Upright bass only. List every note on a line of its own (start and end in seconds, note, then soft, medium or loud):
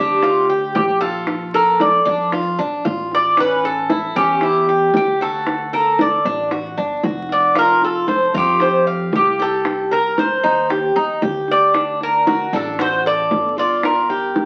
0.00 0.71 D2 loud
0.75 2.00 A#1 medium
2.07 2.55 F2 medium
2.59 2.83 A#1 medium
2.86 4.10 A1 medium
4.16 4.91 E2 medium
4.94 6.19 D2 medium
6.25 6.74 A1 medium
6.78 7.02 G1 medium
7.04 8.28 F1 medium
8.34 9.09 F2 loud
9.12 10.37 C2 medium
10.44 10.92 D#2 medium
10.96 11.20 D#2 medium
11.23 12.47 D2 medium
12.53 13.27 A1 medium
13.32 14.45 G1 medium